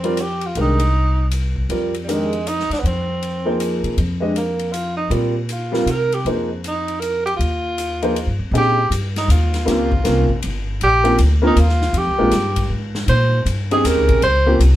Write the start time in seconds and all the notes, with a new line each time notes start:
Already playing: F2 C4
0.04 G3 C4 F4 A#4 D5, ride
0.17 hi-hat pedal, ride
0.21 G4
0.41 ride
0.46 F4
0.55 C2 D#3 G#3 D4 G4 A#4, ride
0.61 D#4
0.80 ride
1.31 hi-hat pedal, ride
1.56 kick
1.69 F2 G3 C4 F4 A#4 D5, ride
1.94 ride
2.04 D#3 G3 G#3
2.08 G#3 D4 G4 A#4, hi-hat pedal, ride
2.33 ride
2.47 D#4, hi-hat pedal, ride
2.60 snare
2.70 D4, muted upright bass stroke, snare, ride
2.80 F2 B3
2.86 C4, ride
3.23 ride
3.45 F3 A#3 D#4 G#4 C5
3.60 hi-hat pedal, ride
3.83 C3, ride
3.97 F2, ride
4.20 G#3 D4 G4 C5 D#5
4.36 A#3, hi-hat pedal, ride
4.59 ride
4.72 F4, hi-hat pedal, ride
4.97 D#4
5.10 A#2 G3 C4 F4 A#4 D5, ride
5.49 F4, hi-hat pedal, ride
5.72 G3 C4 F4 A#4 F5, snare
5.86 C3, hi-hat pedal, ride
5.90 A#4
6.12 G4, ride
6.25 F2 F3 A#3 D#4 G#4 C5, ride
6.64 D#4, hi-hat pedal, ride
6.88 ride
7.00 A#4, hi-hat pedal, ride
7.26 G4, ride
7.37 D#2 F4, ride
7.78 hi-hat pedal, ride
8.02 F3 A#3 D#4 G#4 C5, ride
8.16 ride
8.27 G2
8.39 F2
8.51 A#2 C4 C#4 D#4 G4 G#4, ride
8.57 G4
8.90 G2, hi-hat pedal, ride
9.16 D#4, snare, ride
9.28 D#2 F4, hi-hat pedal, ride
9.54 snare, ride
9.66 C#2 A#3 C4 C#4 F4 G4, snare, ride
9.92 kick
10.04 C2 A#3 C4 C#4 F4 A#4, snare, hi-hat pedal, ride
10.29 muted upright bass stroke, kick
10.42 G1, ride
10.81 A#1 G4, ride
11.04 A#3 C4 C#4 F4 G4, ride
11.18 D2, hi-hat pedal, ride
11.42 A#3 C4 C#4 F4 A#4
11.47 D#4
11.56 D#2 F4, hi-hat pedal, ride
11.69 snare
11.82 snare
11.93 F2, ride
11.97 G4
12.07 C#2
12.19 A#1 G#3 A#3 C4 D#4 F4
12.31 G2, snare, hi-hat pedal, ride
12.56 kick, ride
12.69 G#2
12.95 snare
13.08 A#2 C5, ride
13.46 G2, hi-hat pedal, ride
13.71 C4 C#4 D#4 G4 G#4, ride
13.84 D#2 A#4, snare, hi-hat pedal, ride
13.97 C#2
14.09 A#1, kick, ride
14.22 C#2 C5, ride
14.46 A#3 C4 C#4 F4 G4
14.59 C2, hi-hat pedal, ride